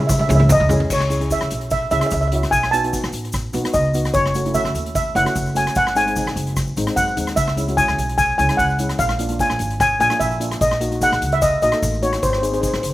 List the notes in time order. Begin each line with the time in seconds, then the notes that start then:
Already playing: C#3 C#4 E4 G#4
0.07 E5, kick, mid tom, shaker
0.14 E5
0.19 E5, mid tom
0.28 C#2 C#4 E4 G#4 E5, mid tom, shaker
0.35 E5
0.40 mid tom
0.49 D#5, kick, mid tom, shaker
0.60 C#2, floor tom
0.69 C#4 E4 G#4, floor tom, shaker
0.80 floor tom
0.90 C#2 C#5, kick, crash, shaker
1.00 cross-stick
1.10 C#4 E4 G#4, closed hi-hat, shaker
1.20 C#4 E4 G#4, closed hi-hat, shaker
1.30 C#4 E4 G#4 E5, kick, closed hi-hat, shaker
1.41 C#2, cross-stick, shaker
1.51 B1, closed hi-hat, shaker
1.61 closed hi-hat
1.71 E5, kick, closed hi-hat, shaker
1.91 C#2 C#4 E4 G#4 E5, closed hi-hat, shaker
2.00 C#4 E4 G#4 E5, cross-stick, closed hi-hat, shaker
2.07 E5
2.11 C#2 E5, kick, closed hi-hat, shaker
2.21 E5, shaker
2.28 E5
2.32 C#4 E4 F#4 E5, closed hi-hat
2.43 cross-stick, closed hi-hat, shaker
2.51 B1 G#5, kick, closed hi-hat, shaker
2.63 cross-stick
2.71 B3 D#4 F#4 A5, closed hi-hat, shaker
2.84 B3 D#4 F#4, closed hi-hat
2.93 B3 D#4 F#4, kick, closed hi-hat, shaker
3.04 B1, cross-stick, shaker
3.13 A1, closed hi-hat, shaker
3.25 closed hi-hat
3.32 kick, cross-stick, closed hi-hat, shaker
3.53 B1 B3 D#4 F#4, closed hi-hat, shaker
3.64 B3 D#4 F#4, cross-stick, closed hi-hat
3.74 C#2 D#5, kick, closed hi-hat, shaker
3.84 shaker
3.94 B3 D#4 F#4, closed hi-hat, shaker
4.05 cross-stick, closed hi-hat, shaker
4.14 F#1 C#5, kick, closed hi-hat, shaker
4.26 cross-stick
4.34 A3 C#4 F#4, closed hi-hat, shaker
4.45 A3 C#4 E4, closed hi-hat, shaker
4.54 A3 C#4 F#4 E5, kick, closed hi-hat, shaker
4.65 F#1, cross-stick, shaker
4.75 D#2, closed hi-hat, shaker
4.86 closed hi-hat
4.95 E5, kick, closed hi-hat, shaker
5.15 F#1 A3 C#4 E4 F#5, closed hi-hat, shaker
5.25 A3 C#4 F#4, cross-stick, closed hi-hat, shaker
5.36 F#1, kick, closed hi-hat, shaker
5.46 shaker
5.55 A3 C#4 F#4 G#5, closed hi-hat, shaker
5.66 cross-stick, closed hi-hat, shaker
5.75 G#1 F#5, kick, closed hi-hat, shaker
5.87 cross-stick
5.95 G#3 C4 D#4 G#5, closed hi-hat, shaker
6.06 G#3 C4 D#4, closed hi-hat
6.16 G#3 C4 D#4, kick, closed hi-hat, shaker
6.26 G#1, cross-stick
6.36 F#1, closed hi-hat, shaker
6.47 closed hi-hat
6.56 kick, cross-stick, closed hi-hat, shaker
6.67 shaker
6.77 G#1 G#3 C4 D#4, closed hi-hat, shaker
6.87 G#3 C4 D#4, cross-stick, closed hi-hat
6.96 F#2 F#5, kick, closed hi-hat, shaker
7.08 shaker
7.16 D#2 G#3 C4 D#4, closed hi-hat, shaker
7.27 cross-stick, closed hi-hat
7.36 C#2 E5, kick, closed hi-hat, shaker
7.48 cross-stick
7.57 G#3 C#4 E4, closed hi-hat, shaker
7.68 G#3 C#4 F#4, closed hi-hat, shaker
7.77 G#3 C#4 E4 G#5, kick, closed hi-hat, shaker
7.88 C#2, cross-stick
7.98 B1, closed hi-hat, shaker
8.09 closed hi-hat
8.18 G#5, kick, closed hi-hat, shaker
8.38 C#2 G#3 C#4 E4 G#5, closed hi-hat, shaker
8.49 G#3 C#4 E4, cross-stick, closed hi-hat, shaker
8.57 C#2 F#5, kick, closed hi-hat, shaker
8.70 shaker
8.79 G#3 C#4 E4, closed hi-hat, shaker
8.89 cross-stick, closed hi-hat, shaker
8.98 A#1 F5, kick, closed hi-hat, shaker
9.09 cross-stick
9.19 A#3 D4 F4, closed hi-hat, shaker
9.29 A#3 D4 F4, closed hi-hat, shaker
9.39 A#3 D4 F4 G#5, kick, closed hi-hat, shaker
9.50 A#1, cross-stick, shaker
9.59 G#1, closed hi-hat, shaker
9.70 closed hi-hat
9.80 G#5, kick, cross-stick, closed hi-hat, shaker
10.00 A#1 A#3 D4 F4 G#5, closed hi-hat, shaker
10.10 A#3 D4 F4, cross-stick, closed hi-hat, shaker
10.20 A#1 E5, kick, closed hi-hat, shaker
10.40 A#3 D4 F4, closed hi-hat, shaker
10.51 cross-stick, closed hi-hat, shaker
10.61 A#1 D#5, kick, closed hi-hat, shaker
10.71 cross-stick
10.80 A#3 D#4 F#4, closed hi-hat, shaker
10.91 A#3 D#4 F#4, closed hi-hat, shaker
11.00 A#3 D#4 G#4 F#5, kick, closed hi-hat, shaker
11.12 A#1, cross-stick, shaker
11.22 C#2, closed hi-hat, shaker
11.32 E5, closed hi-hat
11.42 D#5, kick, closed hi-hat, shaker
11.62 A#1 A#3 D#4 F#4 D#5, closed hi-hat, shaker
11.72 A#3 D#4 A4, cross-stick, closed hi-hat, shaker
11.82 A1, kick, closed hi-hat, shaker
11.94 shaker
12.02 A#3 D#4 F#4 C#5, closed hi-hat, shaker
12.13 cross-stick, closed hi-hat, shaker
12.23 G#1 C5, kick, closed hi-hat, shaker
12.30 C5, cross-stick
12.35 C5, shaker
12.41 C4 D#4 G#4, closed hi-hat, shaker
12.46 C5
12.52 C4 D#4 G#4 C5, closed hi-hat, shaker
12.61 C4 D#4 G#4 C5, kick, closed hi-hat, shaker
12.68 C5
12.73 G#1 C5, cross-stick, shaker
12.82 F#1 C5, closed hi-hat, shaker
12.91 C5